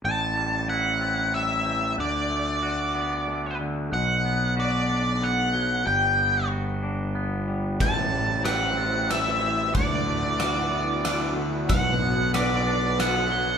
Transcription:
<<
  \new Staff \with { instrumentName = "Glockenspiel" } { \time 3/4 \key a \dorian \tempo 4 = 93 g'''4 b'''8 a'''4 g'''8 | fis'''4 fis'''4 fis'''4 | fis'''4 b'''8 a'''4 g''''8 | fis'''4 fis'''4 fis'''4 |
g'''4 b'''8 a'''4 g'''8 | fis'''4 fis'''4 fis'''4 | fis'''4 b'''8 a'''4 g''''8 | }
  \new Staff \with { instrumentName = "Lead electric guitar" } { \time 3/4 \key a \dorian a''4 fis''4 e''4 | d''2~ d''8 r8 | fis''4 d''4 fis''4 | g''4 r2 |
a''4 fis''4 e''4 | d''2~ d''8 r8 | fis''4 d''4 fis''4 | }
  \new Staff \with { instrumentName = "Analog synth pad" } { \time 3/4 \key a \dorian << { r2. | r2. | r2. | r2. |
<a g' c''>2. | d2. | b'2. | } \\ { r2. | r2. | r2. | r2. |
<e' b'>2. | <d' fis'>2.~ | <d' fis'>2. | } >> }
  \new Staff \with { instrumentName = "Clean electric guitar" } { \time 3/4 \key a \dorian a,8 g8 e'8 c'8 g8 e8 | d8 a8 fis'8 b8 a8 d8 | b,8 b8 fis'8 d'8 b8 fis8 | g8 b8 fis'8 d'8 b8 g8 |
a,8 g8 g'8 c'8 g8 e8 | d8 a8 fis'8 b8 a8 d8 | b,8 b8 fis'8 d'8 b8 fis8 | }
  \new Staff \with { instrumentName = "Fingered electric bass" } { \clef bass \time 3/4 \key a \dorian a,,2. | d,2. | b,,2. | g,,2. |
a,,2. | d,2. | b,,2. | }
  \new DrumStaff \with { instrumentName = "Drums" } \drummode { \time 3/4 r4 r4 r4 | r4 r4 r4 | r4 r4 r4 | r4 r4 r4 |
<bd cymr>4 <cymr ss>4 <cymr ss>4 | <bd cymr>4 <cymr ss>4 <cymr ss>4 | <bd cymr>4 <cymr ss>4 <cymr ss>4 | }
>>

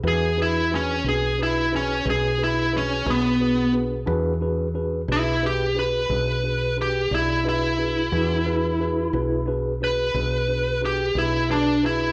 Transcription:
<<
  \new Staff \with { instrumentName = "Tine electric piano" } { \time 12/8 \key e \mixolydian \tempo 4. = 59 <d' fis' gis' b'>8 <d' fis' gis' b'>8 <d' fis' gis' b'>8 <d' fis' gis' b'>8 <d' fis' gis' b'>8 <d' fis' gis' b'>8 <d' fis' gis' b'>8 <d' fis' gis' b'>8 <d' fis' gis' b'>8 <d' fis' gis' b'>8 <d' fis' gis' b'>8 <d' fis' gis' b'>8 | <d' fis' gis' b'>8 <d' fis' gis' b'>8 <d' fis' gis' b'>8 <d' fis' gis' b'>8 <d' fis' gis' b'>8 <d' fis' gis' b'>8 <d' fis' gis' b'>8 <d' fis' gis' b'>8 <d' fis' gis' b'>8 <d' fis' gis' d''>8 <d' fis' gis' b'>8 <d' fis' gis' b'>8 | <d' fis' gis' b'>8 <d' fis' gis' b'>8 <d' fis' gis' b'>8 <d' fis' gis' b'>8 <d' fis' gis' b'>8 <d' fis' gis' b'>8 <d' fis' gis' b'>8 <d' fis' gis' b'>8 <d' fis' gis' b'>8 <d' fis' gis' b'>8 <d' fis' gis' b'>8 <d' fis' gis' b'>8 | }
  \new Staff \with { instrumentName = "Lead electric guitar" } { \time 12/8 \key e \mixolydian gis'8 e'8 cis'8 gis'8 e'8 cis'8 gis'8 e'8 cis'8 b4 r8 | r4. e'8 g'8 b'4. g'8 e'8 e'4~ | e'2 r8 b'4. g'8 e'8 d'8 e'8 | }
  \new Staff \with { instrumentName = "Fretless electric bass" } { \clef bass \time 12/8 \key e \mixolydian e,4. b,,4. b,,4. b,,4. | e,4. b,,4. b,,4. b,,4. | e,4. b,,4. b,,4. b,,4. | }
>>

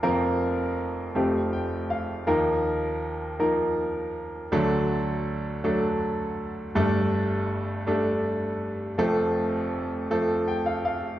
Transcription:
<<
  \new Staff \with { instrumentName = "Upright piano" } { \time 6/8 \key f \mixolydian \tempo 4. = 54 r2 g''8 f''8 | r2. | r2. | r2. |
r2 g''16 f''16 f''8 | }
  \new Staff \with { instrumentName = "Upright piano" } { \time 6/8 \key f \mixolydian << { <f bes c' bes'>4. <f a c' g'>4. | <f bes ees' bes'>4. <f bes ees' bes'>4. | <fis a d' a'>4. <fis a d' a'>4. | <g a d' a'>4. <g a d' a'>4. |
<f a c' a'>4. <f a c' a'>4. | } \\ { <f,, f,>4. <f,, f,>4. | ees,2. | <d, d>2. | <g,, g,>2. |
<f,, f,>2. | } >> }
>>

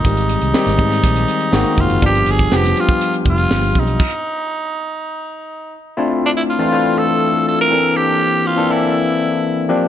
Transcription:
<<
  \new Staff \with { instrumentName = "Tenor saxophone" } { \time 4/4 \key g \phrygian \tempo 4 = 121 ees'2.~ ees'8 f'8 | g'8 aes'8 g'8 f'4 f'4 ees'8~ | ees'2.~ ees'8 r8 | \key bes \lydian r8 d'16 e'16 f'4 a'4 a'16 bes'8. |
g'4 f'8 e'2 r8 | }
  \new Staff \with { instrumentName = "Tine electric piano" } { \time 4/4 \key g \phrygian <ees g aes c' g'>8. r16 <ees g aes c' g'>4.~ <ees g aes c' g'>16 r16 <ees aes bes c' ges'>8. r16 | <f g b d' f' g'>8. r16 <f g b d' g'>4.~ <f g b d' g'>16 r4 r16 | r1 | \key bes \lydian <a c' d' e' f'>4 r16 <e a c' d' f'>16 <a c' d' e' f'>4.~ <a c' d' e' f'>16 r16 <e bes c' d' a'>8~ |
<e bes c' d' a'>4 r16 <e bes c' d' a'>16 <e bes c' d' a'>4.~ <e bes c' d' a'>16 r16 <f bes c' d' g'>8 | }
  \new Staff \with { instrumentName = "Fingered electric bass" } { \clef bass \time 4/4 \key g \phrygian aes,,8. c,16 r16 aes,,16 aes,8 bes,,8 r8 aes,,16 r16 ges,,16 ges,,16 | g,,8 g,,8 f,,8 r4 f,,8 g,,8 b,,8 | r1 | \key bes \lydian r1 |
r1 | }
  \new DrumStaff \with { instrumentName = "Drums" } \drummode { \time 4/4 <hh bd>16 hh16 hh16 hh16 sn16 <hh sn>16 <hh bd>16 <hh sn>16 <hh bd>16 hh16 hh16 hh16 sn16 hh16 <hh bd>16 hh16 | <hh bd>16 hh16 hh16 <hh bd>16 sn16 <hh sn>16 hh16 <hh bd>16 hh16 hh16 <hh bd>16 hh16 sn16 hh16 <hh bd>16 hh16 | <cymc bd>4 r4 r4 r4 | r4 r4 r4 r4 |
r4 r4 r4 r4 | }
>>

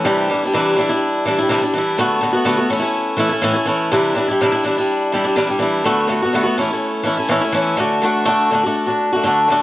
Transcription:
\new Staff \with { instrumentName = "Steel-string acoustic guitar" } { \time 4/4 \key d \major \tempo 4 = 124 <c e g d' e'>8 <e g d' e'>16 <g d' e'>16 <c e g d' e'>8 <e g d' e'>16 <g d' e'>8. <e g d' e'>16 <g d' e'>16 <c e g d' e'>16 <g d' e'>16 <e g d' e'>8 | <d a b fis'>8 <d a b fis'>16 <a b fis'>16 <d a b fis'>16 <a b fis'>16 <e a cis' e'>16 <a cis' e'>8. <e a cis' e'>16 <a cis' e'>16 <a, e a cis' e'>16 <a cis' e'>16 <e a cis' e'>8 | <c e g d' e'>8 <e g d' e'>16 <g d' e'>16 <c e g d' e'>16 <g d' e'>16 <e g d' e'>16 <g d' e'>8. <e g d' e'>16 <g d' e'>16 <c e g d' e'>16 <g d' e'>16 <e g d' e'>8 | <d a b fis'>8 <d a b fis'>16 <a b fis'>16 <d a b fis'>16 <a b fis'>16 <e a cis' e'>16 <a cis' e'>8. <e a cis' e'>16 <a cis' e'>16 <a, e a cis' e'>16 <a cis' e'>16 <e a cis' e'>8 |
<d a d' fis'>8 <d a d' fis'>8 <d a d' fis'>8 <d a d' fis'>16 <a d' fis'>8 <a d' fis'>8 <a d' fis'>16 <d a d' fis'>8 <d a d' fis'>16 r16 | }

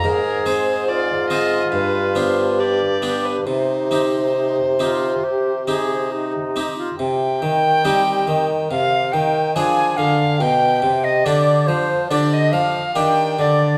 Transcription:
<<
  \new Staff \with { instrumentName = "Flute" } { \time 4/4 \key c \minor \tempo 4 = 70 aes'4 f'2 g'4 | ees'4 ees'8 f'8 g'8 aes'8 ees'8. f'16 | g''2 f''8 g''8 aes''8 f''8 | g''8. ees''16 d''8 c''8 d''16 ees''16 f''8 g''8 d''8 | }
  \new Staff \with { instrumentName = "Violin" } { \time 4/4 \key c \minor bes'8 c''8 d''8 ees''8 b'8 c''8 d''8. b'16 | c''2. r4 | g''2 f''8 g''8 aes''8 f''8 | g''8. ees''16 d''8 c''8 d''16 ees''16 f''8 g''8 d''8 | }
  \new Staff \with { instrumentName = "Harpsichord" } { \time 4/4 \key c \minor r8 <c' aes' c''>4 <c' aes' c''>8 r8 <b d' g'>4 <b d' g'>8 | r8 <c' ees' g'>4 <c' ees' g'>8 r8 <c' ees' g'>4 <c' ees' g'>8 | r4 <c' ees' g'>4 r4 <d' aes' d''>4 | r4 <d' g' d''>4 <d' g' d''>4 <d' g' d''>4 | }
  \new Staff \with { instrumentName = "Harpsichord" } { \clef bass \time 4/4 \key c \minor aes,2 g,2 | c2.~ c8 r8 | c8 ees8 g8 ees8 c8 ees8 f8 d8 | b,8 c8 d8 f8 d8 f8 ees8 d8 | }
  \new Staff \with { instrumentName = "Bassoon" } { \clef bass \time 4/4 \key c \minor aes,2 g,2 | c2.~ c8 r8 | c8 ees8 g8 ees8 c8 ees8 f8 d8 | b,8 c8 d8 f8 d8 f8 ees8 d8 | }
>>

